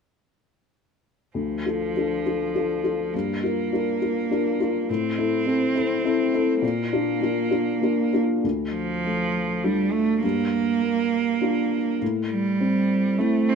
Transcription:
1.34 upright piano D2, cello F3
1.66 upright piano F4 A4
1.96 upright piano D4 F4 A4
2.26 upright piano F4 A4
2.55 upright piano D4 F4 A4
2.84 upright piano F4 A4
3.13 upright piano G2, cello A#3
3.43 upright piano F4 A#4
3.72 upright piano D4 F4 A#4
4.02 upright piano F4 A#4
4.31 upright piano D4 F4 A#4
4.60 upright piano F4 A#4
4.89 upright piano A2, cello C4
5.18 upright piano E4 A4
5.46 upright piano C4 E4 A4
5.75 upright piano E4 A4
6.05 upright piano C4 E4 A4
6.34 upright piano E4 A4
6.62 upright piano A#2, cello A#3
6.92 upright piano D4 F4
7.21 upright piano A#3 D4 F4
7.51 upright piano D4 F4
7.81 upright piano A#3 D4 F4
8.13 upright piano D4 F4
8.44 upright piano D2
8.73 cello F3
9.05 upright piano A3
9.64 cello G3, upright piano D4 F4
9.93 cello A3
10.22 upright piano G2, cello A#3
10.82 upright piano A#3
11.41 upright piano D4 F4
12.02 upright piano A2
12.30 cello G3
12.60 upright piano C4
13.18 cello A3, upright piano C4 E4
13.49 cello C4

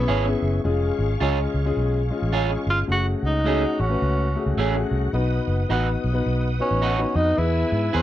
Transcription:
Already playing: grand piano B3 C#4 E4 B4, tenor saxophone B3, tonewheel organ G#4 E5 C#6
0.08 fingered electric bass G#1, clean electric guitar E4 G#4 C#5
0.25 grand piano B3 C#4 E4 G#4
0.42 fingered electric bass F#1
0.64 fingered electric bass F1, grand piano G#3 C#4 F4 G#4, tonewheel organ G#4 F5
0.99 fingered electric bass G#1
1.20 fingered electric bass C#2, grand piano G#3 C#4 F4 G#4, clean electric guitar F4 G#4 C#5
1.54 fingered electric bass C#2
1.65 grand piano G#3 C#4 F4 G#4
1.77 fingered electric bass B1
2.10 grand piano G#3 C#4 F4 G#4
2.22 fingered electric bass A1
2.33 clean electric guitar F4 G#4 C#5
2.49 grand piano G#3 C#4 F4 G#4
2.67 fingered electric bass G1, tenor saxophone F4
2.87 fingered electric bass F#1, grand piano A3 C#4 F#4 G#4, tonewheel organ F#4 F#5
2.92 tenor saxophone F#4
3.23 fingered electric bass C#2, tenor saxophone D#4
3.44 grand piano A3 C#4 F#4 G#4, clean electric guitar A3 C#4 G#4
3.80 fingered electric bass A1, tenor saxophone C#4
3.90 grand piano A3 C#4 F#4 B4
4.02 fingered electric bass C#2
4.36 grand piano A3 C#4 F#4 G#4
4.46 fingered electric bass C#2
4.57 fingered electric bass A1, clean electric guitar A3 C#4 G#4
4.74 grand piano A3 C#4 F#4 G#4
4.91 fingered electric bass C2
5.13 fingered electric bass B1, grand piano B3 D#4 F#4 B4, tonewheel organ B4 D#6
5.47 fingered electric bass F#1
5.69 fingered electric bass A1, grand piano B3 D#4 F#4 B4, clean electric guitar D#4 F#4 B4
6.04 fingered electric bass B1
6.13 grand piano B3 D#4 F#4 B4
6.26 fingered electric bass B1
6.59 grand piano B3 D#4 F#4 B4, tenor saxophone C#4
6.71 fingered electric bass A1
6.82 clean electric guitar D#4 F#4 B4
6.98 grand piano B3 D#4 F#4 B4
7.15 fingered electric bass F2, tenor saxophone D#4
7.36 fingered electric bass E2, grand piano B3 E4 G#4 B4, tenor saxophone E4, tonewheel organ G#5 E6
7.72 fingered electric bass G#2
7.93 fingered electric bass E2, grand piano B3 E4 G#4 B4, tenor saxophone C#4, clean electric guitar E4 G#4 B4

